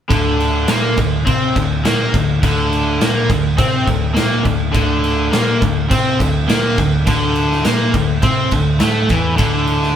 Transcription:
0.09 D2 D3, kick, crash
0.40 crash
0.68 A#2 A#3, snare, crash
0.97 D2 D3, kick, crash
1.26 C3 C4, kick, crash
1.56 D2 D3, kick, crash
1.84 A#2 A#3, snare, crash
2.14 D2 D3, kick, crash
2.43 D2 D3, kick, crash
2.73 crash
3.01 A#2 A#3, snare, crash
3.29 D2 D3, kick, crash
3.58 C3 C4, kick, crash
3.86 D2 D3, kick, crash
4.15 A#2 A#3, snare, crash
4.44 D2 D3, kick, crash
4.72 D2 D3, kick, crash
5.04 crash
5.31 A#2 A#3, snare, crash
5.61 D2 D3, kick, crash
5.91 C3 C4, kick, crash
6.20 D2 D3, kick, crash
6.49 A#2 A#3, snare, crash
6.78 D2 D3, kick, crash
7.07 D2 D3, kick, crash
7.36 crash
7.51 snare
7.64 A#2 A#3, snare, crash
7.93 D2 D3, kick, crash
8.22 C3 C4, kick, crash
8.51 D2 D3, kick, crash
8.80 A2 A3, snare, crash
9.09 E2 E3, kick, crash
9.37 D2 D3, kick, crash
9.67 crash
9.83 snare

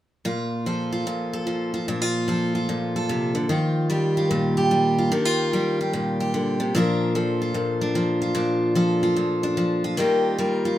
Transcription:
0.25 A#2 F4
0.66 F3 A4
0.92 F4
1.07 A#2
1.33 A4
1.47 F3
1.74 F4
1.88 A#2 D4
2.02 F4
2.28 F3 A4
2.55 F4
2.69 A#2
2.96 A4
3.09 C3
3.35 D3
3.49 D#3 F4
3.90 G3 G4
4.17 F4
4.31 A#2
4.57 G4
4.71 G3
4.98 F4
5.12 D#3 D4
5.25 F4
5.53 G3 G4
5.81 F4
5.93 A#2
6.20 G4
6.34 D3
6.60 C3
6.75 A#2 F3 D4 F4 A#4
7.15 F3 A4
7.42 F4
7.54 A#2
7.81 D4
7.95 F3
8.22 F4
8.35 A#2 D4
8.75 F3 A4
9.03 F4
9.16 A#2
9.43 D4
9.57 F3
9.84 F4
9.97 D#3 G3 A#3 F4 G4
10.38 G3 A#4
10.65 F4

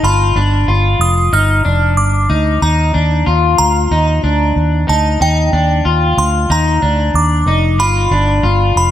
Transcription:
0.03 G1 F4 B5
0.35 G1 D4
0.68 G1 F4
0.99 F1 D#6
1.33 G1 D#4 F6
1.65 F1 D4
1.97 G1 D6
2.30 D2 D#4
2.62 D#2 D#4 A#5
2.94 D#2 D4
3.26 D#2 F4
3.58 D2 A#5
3.91 D#2 D#4
4.24 D2 D4
4.56 D#2
4.88 D2 D#4 A5
5.21 D#2 D#4 G5
5.53 D#2 D4
5.85 D#2 F4
6.17 D2 C6
6.50 D#2 D#4 A#5
6.82 D2 D4
7.14 D#2 D6
7.46 F1 D#4
7.78 G1 F4 B5
8.11 G1 D4
8.43 G1 F4
8.76 F1 B5

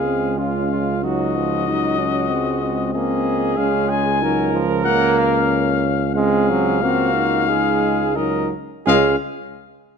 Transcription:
Already playing: C#2 G#3 G#4 F5
0.06 C4
0.38 C#4 F4 F5
0.72 F4
1.02 F#3 D#4 F#4 D#5
1.36 F3
1.67 F#3 D#4
1.99 C#4
2.29 G#3 C4
2.62 C4
2.93 A#3 G#4 D#5
3.57 C#2 G#3 C#4 F5
3.90 G#5
4.21 F#3 D#4 A#4
4.53 F3
4.84 A#3 C#4 F#5
5.18 F5
6.15 G#3 C4 G#4 F5
6.50 F#3
6.81 A#3 C4 F#4
7.14 D#4
7.48 G#3 G#4
8.16 F#3 D#4 A#4 D#5
8.86 C#2 G#3 C#4 G#4 F5

